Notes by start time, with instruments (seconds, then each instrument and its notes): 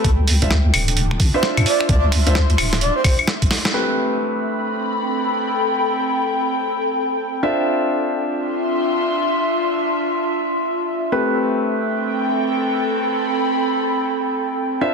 Already playing: analog synth pad C4 A4 G5, soft synth lead A4
0.04 wobble bass D2, analog synth pad D4, kick, closed hi-hat
0.28 open hi-hat
0.35 analog synth pad F4
0.42 grand piano D4 F4 C5 E5, kick, closed hi-hat
0.51 snare
0.74 wobble bass D1, open hi-hat, claves
0.88 analog synth pad E5, closed hi-hat
0.97 closed hi-hat
1.11 finger snap
1.17 wobble bass A1, analog synth pad C6, kick, open hi-hat
1.34 grand piano D4 F4 C5 E5, soft synth lead C5
1.43 snare
1.57 wobble bass G2, finger snap, closed hi-hat, claves
1.66 soft synth lead D5, open hi-hat
1.81 finger snap
1.89 wobble bass D2, soft synth lead D5, kick, closed hi-hat
2.12 finger snap, open hi-hat
2.27 grand piano D4 F4 C5 E5, soft synth lead C5, closed hi-hat
2.35 snare
2.50 closed hi-hat
2.58 wobble bass D1, finger snap, open hi-hat, claves
2.73 snare, closed hi-hat
2.81 soft synth lead D5, closed hi-hat
2.96 soft synth lead C5
3.04 soft synth lead C5, finger snap, kick, open hi-hat, claves
3.19 claves
3.28 snare
3.42 wobble bass C2, kick, closed hi-hat
3.51 snare, open hi-hat
3.65 snare
3.74 grand piano A3 C4 G4 B4, analog synth pad C4
3.93 analog synth pad B5
4.14 analog synth pad A4
4.58 analog synth pad G5
7.43 grand piano D4 F4 C5 E5, analog synth pad D4
7.69 analog synth pad F4
7.87 analog synth pad E5
8.13 analog synth pad C6
11.12 grand piano A3 C4 G4 B4, analog synth pad C4
11.36 analog synth pad G5
11.53 analog synth pad A4
12.68 analog synth pad B5
14.81 grand piano D4 F4 C5 E5, analog synth pad D4